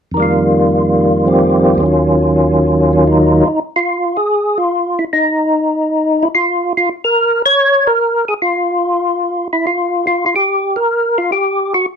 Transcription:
0.11 1.79 F2 soft
0.11 1.77 D#3 soft
0.17 1.82 G3 soft
0.17 1.25 A#3 soft
0.22 1.84 F4 soft
1.25 1.81 F3 soft
1.25 1.81 A#3 soft
1.25 1.81 C4 soft
1.25 1.82 G4 soft
1.75 3.43 D#2 soft
1.75 3.44 D#3 soft
1.81 3.46 F#3 soft
1.81 2.92 C#4 soft
1.86 3.48 F4 soft
2.93 3.05 C#4 medium
3.07 3.46 D#4 medium
3.48 3.60 D#4 medium
3.76 4.17 F4 medium
4.17 4.58 G#4 medium
4.58 4.99 F4 medium
4.99 5.05 E4 medium
5.13 6.25 D#4 medium
6.23 6.28 E4 medium
6.35 6.73 F4 medium
6.77 6.89 F4 medium
7.04 7.42 A#4 loud
7.46 7.88 C#5 loud
7.87 8.25 A#4 loud
8.28 8.34 G#4 medium
8.42 9.48 F4 medium
9.53 9.66 E4 medium
9.67 10.06 F4 medium
10.07 10.25 F4 medium
10.26 10.35 F4 medium
10.36 10.77 G4 medium
10.76 11.18 A#4 medium
11.18 11.31 F4 medium
11.32 11.73 G4 medium
11.74 11.86 F#4 medium

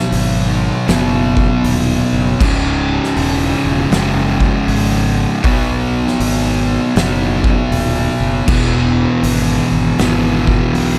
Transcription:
0.00 0.86 B2 loud
0.00 0.87 F#3 loud
0.00 0.88 B3 loud
0.12 0.69 G#1 medium
0.12 open hi-hat medium
0.87 1.45 F#1 loud
0.87 2.38 B2 medium
0.87 2.39 F#3 loud
0.87 2.40 B3 loud
0.87 snare loud
0.87 open hi-hat medium
1.37 kick medium
1.64 2.00 D#1 loud
1.64 open hi-hat medium
2.12 2.33 F#1 loud
2.40 2.98 C#1 loud
2.40 3.90 C#2 loud
2.40 3.91 G#2 loud
2.40 3.92 C#3 loud
2.40 kick loud
2.40 crash loud
3.04 snare soft
3.16 3.52 E1 medium
3.16 open hi-hat medium
3.64 3.85 E1 medium
3.91 4.48 F#1 medium
3.91 5.42 C#2 medium
3.91 5.43 G#2 medium
3.91 5.43 C#3 loud
3.91 snare loud
3.91 open hi-hat medium
4.40 kick medium
4.67 5.25 G#1 loud
4.67 open hi-hat medium
5.42 6.01 B1 medium
5.42 6.93 B2 loud
5.42 6.94 F#3 loud
5.42 6.97 B3 loud
5.42 kick loud
5.42 open hi-hat medium
6.07 snare soft
6.19 6.76 G#1 medium
6.19 open hi-hat medium
6.95 7.52 F#1 medium
6.95 8.45 B2 medium
6.95 8.46 F#3 medium
6.95 8.50 B3 loud
6.95 snare loud
6.95 open hi-hat medium
7.44 kick medium
7.71 8.07 D#1 medium
7.71 open hi-hat medium
8.20 8.41 F#1 loud
8.47 9.04 E1 loud
8.47 9.97 E2 medium
8.47 9.98 B2 loud
8.47 9.98 E3 loud
8.47 kick loud
8.47 crash loud
9.23 9.59 G#1 medium
9.23 open hi-hat medium
9.71 9.92 G#1 medium
9.98 10.55 G#1 medium
9.98 10.99 E2 medium
9.98 10.99 B2 medium
9.98 10.99 E3 medium
9.98 snare loud
9.98 open hi-hat medium
10.47 kick medium
10.73 10.99 B1 loud
10.73 open hi-hat medium

